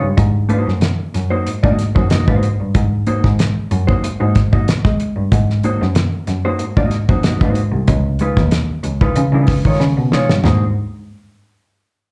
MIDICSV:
0, 0, Header, 1, 4, 480
1, 0, Start_track
1, 0, Tempo, 641026
1, 134, Time_signature, 4, 2, 24, 8
1, 9072, End_track
2, 0, Start_track
2, 0, Title_t, "Clean electric guitar"
2, 0, Program_c, 0, 27
2, 365, Note_on_c, 0, 58, 87
2, 372, Note_on_c, 0, 63, 92
2, 372, Note_on_c, 0, 66, 101
2, 374, Note_on_c, 0, 72, 94
2, 526, Note_off_c, 0, 58, 0
2, 529, Note_off_c, 0, 66, 0
2, 530, Note_off_c, 0, 63, 0
2, 531, Note_off_c, 0, 72, 0
2, 977, Note_on_c, 0, 72, 91
2, 981, Note_on_c, 0, 66, 79
2, 984, Note_on_c, 0, 63, 72
2, 986, Note_on_c, 0, 58, 69
2, 1120, Note_off_c, 0, 72, 0
2, 1121, Note_off_c, 0, 66, 0
2, 1123, Note_off_c, 0, 63, 0
2, 1124, Note_off_c, 0, 58, 0
2, 1220, Note_on_c, 0, 75, 87
2, 1222, Note_on_c, 0, 63, 76
2, 1222, Note_on_c, 0, 66, 78
2, 1225, Note_on_c, 0, 58, 74
2, 1367, Note_off_c, 0, 75, 0
2, 1368, Note_off_c, 0, 66, 0
2, 1369, Note_off_c, 0, 63, 0
2, 1370, Note_off_c, 0, 58, 0
2, 1459, Note_on_c, 0, 72, 66
2, 1461, Note_on_c, 0, 66, 68
2, 1464, Note_on_c, 0, 63, 59
2, 1468, Note_on_c, 0, 58, 55
2, 1564, Note_off_c, 0, 58, 0
2, 1567, Note_off_c, 0, 63, 0
2, 1569, Note_off_c, 0, 66, 0
2, 1569, Note_off_c, 0, 72, 0
2, 1573, Note_on_c, 0, 58, 68
2, 1576, Note_on_c, 0, 63, 65
2, 1578, Note_on_c, 0, 66, 71
2, 1580, Note_on_c, 0, 75, 70
2, 1696, Note_off_c, 0, 58, 0
2, 1697, Note_off_c, 0, 63, 0
2, 1698, Note_off_c, 0, 66, 0
2, 1699, Note_off_c, 0, 75, 0
2, 1707, Note_on_c, 0, 72, 93
2, 1708, Note_on_c, 0, 66, 78
2, 1713, Note_on_c, 0, 63, 72
2, 1714, Note_on_c, 0, 58, 66
2, 1851, Note_off_c, 0, 72, 0
2, 1852, Note_off_c, 0, 66, 0
2, 1854, Note_off_c, 0, 63, 0
2, 1855, Note_off_c, 0, 58, 0
2, 2298, Note_on_c, 0, 58, 87
2, 2299, Note_on_c, 0, 63, 86
2, 2303, Note_on_c, 0, 66, 82
2, 2306, Note_on_c, 0, 72, 97
2, 2450, Note_off_c, 0, 58, 0
2, 2450, Note_off_c, 0, 63, 0
2, 2452, Note_off_c, 0, 66, 0
2, 2454, Note_off_c, 0, 72, 0
2, 2900, Note_on_c, 0, 72, 77
2, 2901, Note_on_c, 0, 66, 76
2, 2906, Note_on_c, 0, 63, 67
2, 2911, Note_on_c, 0, 58, 67
2, 3043, Note_off_c, 0, 72, 0
2, 3044, Note_off_c, 0, 66, 0
2, 3046, Note_off_c, 0, 63, 0
2, 3049, Note_off_c, 0, 58, 0
2, 3145, Note_on_c, 0, 72, 75
2, 3147, Note_on_c, 0, 63, 72
2, 3147, Note_on_c, 0, 66, 81
2, 3152, Note_on_c, 0, 58, 63
2, 3286, Note_off_c, 0, 72, 0
2, 3287, Note_off_c, 0, 63, 0
2, 3287, Note_off_c, 0, 66, 0
2, 3290, Note_off_c, 0, 58, 0
2, 3389, Note_on_c, 0, 75, 75
2, 3390, Note_on_c, 0, 66, 71
2, 3391, Note_on_c, 0, 63, 57
2, 3395, Note_on_c, 0, 58, 55
2, 3496, Note_off_c, 0, 66, 0
2, 3496, Note_off_c, 0, 75, 0
2, 3497, Note_off_c, 0, 63, 0
2, 3499, Note_off_c, 0, 58, 0
2, 4225, Note_on_c, 0, 58, 86
2, 4228, Note_on_c, 0, 63, 82
2, 4231, Note_on_c, 0, 66, 76
2, 4234, Note_on_c, 0, 72, 93
2, 4375, Note_off_c, 0, 58, 0
2, 4376, Note_off_c, 0, 63, 0
2, 4378, Note_off_c, 0, 66, 0
2, 4379, Note_off_c, 0, 72, 0
2, 4829, Note_on_c, 0, 72, 96
2, 4832, Note_on_c, 0, 66, 90
2, 4835, Note_on_c, 0, 63, 81
2, 4838, Note_on_c, 0, 58, 69
2, 4969, Note_off_c, 0, 72, 0
2, 4971, Note_off_c, 0, 66, 0
2, 4972, Note_off_c, 0, 63, 0
2, 4973, Note_off_c, 0, 58, 0
2, 5072, Note_on_c, 0, 66, 76
2, 5072, Note_on_c, 0, 75, 75
2, 5076, Note_on_c, 0, 63, 71
2, 5081, Note_on_c, 0, 58, 70
2, 5216, Note_off_c, 0, 66, 0
2, 5217, Note_off_c, 0, 75, 0
2, 5219, Note_off_c, 0, 63, 0
2, 5221, Note_off_c, 0, 58, 0
2, 5313, Note_on_c, 0, 66, 66
2, 5313, Note_on_c, 0, 72, 65
2, 5319, Note_on_c, 0, 58, 50
2, 5320, Note_on_c, 0, 63, 63
2, 5419, Note_off_c, 0, 66, 0
2, 5419, Note_off_c, 0, 72, 0
2, 5422, Note_off_c, 0, 58, 0
2, 5422, Note_off_c, 0, 63, 0
2, 5430, Note_on_c, 0, 58, 62
2, 5433, Note_on_c, 0, 63, 67
2, 5435, Note_on_c, 0, 66, 74
2, 5438, Note_on_c, 0, 75, 69
2, 5547, Note_off_c, 0, 58, 0
2, 5548, Note_off_c, 0, 63, 0
2, 5550, Note_off_c, 0, 66, 0
2, 5551, Note_off_c, 0, 75, 0
2, 5557, Note_on_c, 0, 72, 81
2, 5564, Note_on_c, 0, 66, 77
2, 5566, Note_on_c, 0, 63, 76
2, 5567, Note_on_c, 0, 58, 65
2, 5699, Note_off_c, 0, 72, 0
2, 5702, Note_off_c, 0, 66, 0
2, 5703, Note_off_c, 0, 63, 0
2, 5704, Note_off_c, 0, 58, 0
2, 6146, Note_on_c, 0, 56, 86
2, 6151, Note_on_c, 0, 65, 91
2, 6152, Note_on_c, 0, 63, 83
2, 6155, Note_on_c, 0, 71, 107
2, 6295, Note_off_c, 0, 56, 0
2, 6298, Note_off_c, 0, 63, 0
2, 6298, Note_off_c, 0, 65, 0
2, 6300, Note_off_c, 0, 71, 0
2, 6753, Note_on_c, 0, 71, 81
2, 6755, Note_on_c, 0, 65, 73
2, 6759, Note_on_c, 0, 63, 83
2, 6761, Note_on_c, 0, 56, 75
2, 6891, Note_off_c, 0, 71, 0
2, 6892, Note_off_c, 0, 65, 0
2, 6894, Note_off_c, 0, 56, 0
2, 6894, Note_off_c, 0, 63, 0
2, 6995, Note_on_c, 0, 65, 79
2, 6996, Note_on_c, 0, 71, 82
2, 6999, Note_on_c, 0, 63, 79
2, 7000, Note_on_c, 0, 56, 78
2, 7137, Note_off_c, 0, 65, 0
2, 7138, Note_off_c, 0, 71, 0
2, 7139, Note_off_c, 0, 63, 0
2, 7140, Note_off_c, 0, 56, 0
2, 7239, Note_on_c, 0, 73, 60
2, 7241, Note_on_c, 0, 65, 57
2, 7246, Note_on_c, 0, 63, 59
2, 7248, Note_on_c, 0, 56, 57
2, 7341, Note_off_c, 0, 73, 0
2, 7342, Note_off_c, 0, 65, 0
2, 7344, Note_off_c, 0, 63, 0
2, 7345, Note_off_c, 0, 56, 0
2, 7585, Note_on_c, 0, 63, 85
2, 7586, Note_on_c, 0, 56, 84
2, 7588, Note_on_c, 0, 65, 103
2, 7590, Note_on_c, 0, 73, 98
2, 7734, Note_off_c, 0, 56, 0
2, 7734, Note_off_c, 0, 63, 0
2, 7735, Note_off_c, 0, 65, 0
2, 7736, Note_off_c, 0, 73, 0
2, 7818, Note_on_c, 0, 58, 89
2, 7825, Note_on_c, 0, 63, 81
2, 7829, Note_on_c, 0, 66, 89
2, 7832, Note_on_c, 0, 72, 90
2, 7969, Note_off_c, 0, 58, 0
2, 7972, Note_off_c, 0, 63, 0
2, 7974, Note_off_c, 0, 66, 0
2, 7976, Note_off_c, 0, 72, 0
2, 9072, End_track
3, 0, Start_track
3, 0, Title_t, "Cello"
3, 0, Program_c, 1, 42
3, 14, Note_on_c, 1, 43, 80
3, 119, Note_off_c, 1, 43, 0
3, 131, Note_on_c, 1, 44, 124
3, 463, Note_off_c, 1, 44, 0
3, 504, Note_on_c, 1, 42, 93
3, 605, Note_off_c, 1, 42, 0
3, 856, Note_on_c, 1, 42, 88
3, 1072, Note_off_c, 1, 42, 0
3, 1099, Note_on_c, 1, 44, 47
3, 1193, Note_off_c, 1, 44, 0
3, 1224, Note_on_c, 1, 44, 96
3, 1325, Note_off_c, 1, 44, 0
3, 1465, Note_on_c, 1, 42, 97
3, 1566, Note_off_c, 1, 42, 0
3, 1579, Note_on_c, 1, 44, 45
3, 1673, Note_off_c, 1, 44, 0
3, 1705, Note_on_c, 1, 44, 95
3, 1807, Note_off_c, 1, 44, 0
3, 1948, Note_on_c, 1, 43, 77
3, 2048, Note_off_c, 1, 43, 0
3, 2059, Note_on_c, 1, 44, 112
3, 2390, Note_off_c, 1, 44, 0
3, 2428, Note_on_c, 1, 44, 92
3, 2529, Note_off_c, 1, 44, 0
3, 2780, Note_on_c, 1, 42, 96
3, 2996, Note_off_c, 1, 42, 0
3, 3018, Note_on_c, 1, 44, 52
3, 3114, Note_off_c, 1, 44, 0
3, 3148, Note_on_c, 1, 44, 106
3, 3250, Note_off_c, 1, 44, 0
3, 3390, Note_on_c, 1, 44, 85
3, 3491, Note_off_c, 1, 44, 0
3, 3632, Note_on_c, 1, 56, 100
3, 3732, Note_off_c, 1, 56, 0
3, 3863, Note_on_c, 1, 43, 83
3, 3968, Note_off_c, 1, 43, 0
3, 3983, Note_on_c, 1, 44, 114
3, 4314, Note_off_c, 1, 44, 0
3, 4353, Note_on_c, 1, 42, 97
3, 4453, Note_off_c, 1, 42, 0
3, 4699, Note_on_c, 1, 42, 81
3, 4917, Note_off_c, 1, 42, 0
3, 4947, Note_on_c, 1, 44, 49
3, 5040, Note_off_c, 1, 44, 0
3, 5068, Note_on_c, 1, 44, 91
3, 5171, Note_off_c, 1, 44, 0
3, 5310, Note_on_c, 1, 42, 82
3, 5412, Note_off_c, 1, 42, 0
3, 5422, Note_on_c, 1, 44, 48
3, 5518, Note_off_c, 1, 44, 0
3, 5549, Note_on_c, 1, 44, 93
3, 5651, Note_off_c, 1, 44, 0
3, 5780, Note_on_c, 1, 36, 89
3, 5886, Note_off_c, 1, 36, 0
3, 5901, Note_on_c, 1, 37, 112
3, 6232, Note_off_c, 1, 37, 0
3, 6267, Note_on_c, 1, 39, 94
3, 6370, Note_off_c, 1, 39, 0
3, 6615, Note_on_c, 1, 37, 82
3, 6834, Note_off_c, 1, 37, 0
3, 6858, Note_on_c, 1, 49, 104
3, 6974, Note_off_c, 1, 49, 0
3, 6979, Note_on_c, 1, 49, 97
3, 7085, Note_off_c, 1, 49, 0
3, 7227, Note_on_c, 1, 51, 87
3, 7329, Note_off_c, 1, 51, 0
3, 7338, Note_on_c, 1, 49, 96
3, 7454, Note_off_c, 1, 49, 0
3, 7469, Note_on_c, 1, 47, 88
3, 7570, Note_off_c, 1, 47, 0
3, 7710, Note_on_c, 1, 43, 90
3, 7810, Note_off_c, 1, 43, 0
3, 7821, Note_on_c, 1, 44, 117
3, 8043, Note_off_c, 1, 44, 0
3, 9072, End_track
4, 0, Start_track
4, 0, Title_t, "Drums"
4, 132, Note_on_c, 9, 36, 99
4, 132, Note_on_c, 9, 42, 73
4, 206, Note_off_c, 9, 42, 0
4, 207, Note_off_c, 9, 36, 0
4, 370, Note_on_c, 9, 42, 55
4, 445, Note_off_c, 9, 42, 0
4, 511, Note_on_c, 9, 38, 34
4, 586, Note_off_c, 9, 38, 0
4, 608, Note_on_c, 9, 42, 79
4, 616, Note_on_c, 9, 38, 102
4, 683, Note_off_c, 9, 42, 0
4, 690, Note_off_c, 9, 38, 0
4, 857, Note_on_c, 9, 42, 84
4, 862, Note_on_c, 9, 38, 35
4, 932, Note_off_c, 9, 42, 0
4, 937, Note_off_c, 9, 38, 0
4, 1097, Note_on_c, 9, 42, 85
4, 1172, Note_off_c, 9, 42, 0
4, 1225, Note_on_c, 9, 36, 101
4, 1300, Note_off_c, 9, 36, 0
4, 1338, Note_on_c, 9, 42, 66
4, 1345, Note_on_c, 9, 38, 38
4, 1412, Note_off_c, 9, 42, 0
4, 1420, Note_off_c, 9, 38, 0
4, 1466, Note_on_c, 9, 36, 93
4, 1541, Note_off_c, 9, 36, 0
4, 1573, Note_on_c, 9, 42, 88
4, 1580, Note_on_c, 9, 38, 112
4, 1648, Note_off_c, 9, 42, 0
4, 1655, Note_off_c, 9, 38, 0
4, 1705, Note_on_c, 9, 36, 91
4, 1780, Note_off_c, 9, 36, 0
4, 1817, Note_on_c, 9, 42, 70
4, 1892, Note_off_c, 9, 42, 0
4, 2056, Note_on_c, 9, 42, 73
4, 2058, Note_on_c, 9, 36, 106
4, 2131, Note_off_c, 9, 42, 0
4, 2133, Note_off_c, 9, 36, 0
4, 2296, Note_on_c, 9, 42, 59
4, 2370, Note_off_c, 9, 42, 0
4, 2426, Note_on_c, 9, 36, 87
4, 2431, Note_on_c, 9, 38, 31
4, 2501, Note_off_c, 9, 36, 0
4, 2506, Note_off_c, 9, 38, 0
4, 2539, Note_on_c, 9, 42, 84
4, 2546, Note_on_c, 9, 38, 108
4, 2614, Note_off_c, 9, 42, 0
4, 2621, Note_off_c, 9, 38, 0
4, 2779, Note_on_c, 9, 42, 90
4, 2854, Note_off_c, 9, 42, 0
4, 2909, Note_on_c, 9, 36, 87
4, 2984, Note_off_c, 9, 36, 0
4, 3024, Note_on_c, 9, 42, 103
4, 3099, Note_off_c, 9, 42, 0
4, 3258, Note_on_c, 9, 42, 74
4, 3262, Note_on_c, 9, 36, 88
4, 3266, Note_on_c, 9, 38, 36
4, 3333, Note_off_c, 9, 42, 0
4, 3337, Note_off_c, 9, 36, 0
4, 3340, Note_off_c, 9, 38, 0
4, 3391, Note_on_c, 9, 36, 83
4, 3466, Note_off_c, 9, 36, 0
4, 3504, Note_on_c, 9, 42, 87
4, 3511, Note_on_c, 9, 38, 108
4, 3579, Note_off_c, 9, 42, 0
4, 3585, Note_off_c, 9, 38, 0
4, 3630, Note_on_c, 9, 36, 107
4, 3632, Note_on_c, 9, 38, 38
4, 3705, Note_off_c, 9, 36, 0
4, 3707, Note_off_c, 9, 38, 0
4, 3742, Note_on_c, 9, 42, 76
4, 3817, Note_off_c, 9, 42, 0
4, 3981, Note_on_c, 9, 42, 74
4, 3982, Note_on_c, 9, 36, 104
4, 4056, Note_off_c, 9, 42, 0
4, 4057, Note_off_c, 9, 36, 0
4, 4116, Note_on_c, 9, 38, 37
4, 4191, Note_off_c, 9, 38, 0
4, 4219, Note_on_c, 9, 42, 57
4, 4294, Note_off_c, 9, 42, 0
4, 4357, Note_on_c, 9, 38, 34
4, 4432, Note_off_c, 9, 38, 0
4, 4456, Note_on_c, 9, 42, 84
4, 4464, Note_on_c, 9, 38, 113
4, 4531, Note_off_c, 9, 42, 0
4, 4538, Note_off_c, 9, 38, 0
4, 4697, Note_on_c, 9, 42, 78
4, 4703, Note_on_c, 9, 38, 36
4, 4772, Note_off_c, 9, 42, 0
4, 4778, Note_off_c, 9, 38, 0
4, 4935, Note_on_c, 9, 42, 86
4, 5010, Note_off_c, 9, 42, 0
4, 5068, Note_on_c, 9, 36, 97
4, 5143, Note_off_c, 9, 36, 0
4, 5174, Note_on_c, 9, 42, 72
4, 5181, Note_on_c, 9, 38, 39
4, 5248, Note_off_c, 9, 42, 0
4, 5256, Note_off_c, 9, 38, 0
4, 5308, Note_on_c, 9, 36, 92
4, 5383, Note_off_c, 9, 36, 0
4, 5416, Note_on_c, 9, 42, 98
4, 5423, Note_on_c, 9, 38, 107
4, 5491, Note_off_c, 9, 42, 0
4, 5498, Note_off_c, 9, 38, 0
4, 5549, Note_on_c, 9, 36, 98
4, 5623, Note_off_c, 9, 36, 0
4, 5656, Note_on_c, 9, 42, 79
4, 5730, Note_off_c, 9, 42, 0
4, 5897, Note_on_c, 9, 42, 80
4, 5900, Note_on_c, 9, 36, 109
4, 5972, Note_off_c, 9, 42, 0
4, 5975, Note_off_c, 9, 36, 0
4, 6133, Note_on_c, 9, 42, 64
4, 6208, Note_off_c, 9, 42, 0
4, 6266, Note_on_c, 9, 36, 90
4, 6268, Note_on_c, 9, 38, 34
4, 6341, Note_off_c, 9, 36, 0
4, 6343, Note_off_c, 9, 38, 0
4, 6374, Note_on_c, 9, 42, 86
4, 6381, Note_on_c, 9, 38, 118
4, 6449, Note_off_c, 9, 42, 0
4, 6456, Note_off_c, 9, 38, 0
4, 6616, Note_on_c, 9, 42, 88
4, 6691, Note_off_c, 9, 42, 0
4, 6747, Note_on_c, 9, 36, 92
4, 6822, Note_off_c, 9, 36, 0
4, 6856, Note_on_c, 9, 42, 96
4, 6931, Note_off_c, 9, 42, 0
4, 7089, Note_on_c, 9, 46, 72
4, 7097, Note_on_c, 9, 38, 37
4, 7098, Note_on_c, 9, 36, 87
4, 7164, Note_off_c, 9, 46, 0
4, 7172, Note_off_c, 9, 38, 0
4, 7173, Note_off_c, 9, 36, 0
4, 7226, Note_on_c, 9, 36, 88
4, 7301, Note_off_c, 9, 36, 0
4, 7339, Note_on_c, 9, 38, 60
4, 7414, Note_off_c, 9, 38, 0
4, 7578, Note_on_c, 9, 38, 94
4, 7653, Note_off_c, 9, 38, 0
4, 7708, Note_on_c, 9, 38, 115
4, 7783, Note_off_c, 9, 38, 0
4, 7815, Note_on_c, 9, 43, 103
4, 7820, Note_on_c, 9, 38, 90
4, 7890, Note_off_c, 9, 43, 0
4, 7895, Note_off_c, 9, 38, 0
4, 9072, End_track
0, 0, End_of_file